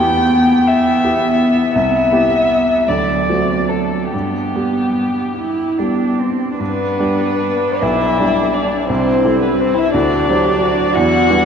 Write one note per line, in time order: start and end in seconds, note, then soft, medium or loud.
0.00 1.77 E2 soft
0.00 0.99 B3 soft
0.00 2.89 B3 soft
0.00 0.99 E4 soft
0.00 1.00 G4 soft
0.00 0.69 G5 medium
0.68 1.73 E5 medium
1.04 1.71 B3 soft
1.04 1.71 E4 soft
1.04 1.71 G4 soft
1.74 2.11 C2 soft
1.74 2.90 E5 medium
2.12 2.84 B3 soft
2.12 2.84 E4 soft
2.12 2.85 G4 soft
2.88 3.28 D2 soft
2.88 4.12 F#3 soft
2.88 3.71 D5 medium
3.29 4.09 A3 soft
3.29 4.09 C4 soft
3.29 4.09 F#4 soft
3.69 4.12 A4 soft
4.12 4.54 G2 soft
4.12 5.26 B3 soft
4.12 6.16 G4 soft
4.55 5.74 G3 soft
4.55 5.74 B3 soft
4.55 5.75 G4 soft
5.37 5.79 E4 soft
5.78 6.56 G3 soft
5.78 6.56 B3 soft
5.78 6.20 D4 soft
5.78 6.56 G4 soft
6.19 6.59 C4 soft
6.58 6.97 G2 soft
6.58 7.83 B3 soft
6.58 8.85 D4 soft
6.58 7.82 B4 medium
6.99 7.78 G3 soft
6.99 7.78 D4 soft
6.99 7.78 G4 soft
7.80 8.19 B1 soft
7.80 8.55 E4 medium
7.80 8.55 E5 medium
8.20 8.85 G3 soft
8.20 8.85 D4 soft
8.20 8.86 G4 soft
8.53 8.87 D4 soft
8.53 8.88 D5 soft
8.88 9.23 C2 soft
8.88 9.39 C4 soft
8.88 9.96 E4 soft
8.88 9.44 C5 medium
9.25 9.91 G3 soft
9.25 9.91 E4 soft
9.25 9.91 A4 soft
9.40 9.57 B3 soft
9.40 9.62 B4 soft
9.57 9.76 C4 soft
9.57 9.79 C5 medium
9.75 9.92 E4 soft
9.75 9.94 E5 medium
9.92 10.28 D2 soft
9.92 10.95 D4 soft
9.92 10.30 F#4 soft
9.92 10.97 D5 medium
10.28 10.92 F#3 soft
10.28 10.92 D4 soft
10.28 10.64 G4 soft
10.28 10.92 C5 soft
10.62 10.95 F#4 soft
10.93 11.28 E2 soft
10.93 11.45 E4 medium
10.93 11.45 F#4 medium
10.93 11.45 F#5 medium
11.29 11.45 G3 soft
11.29 11.45 D4 soft
11.29 11.45 B4 soft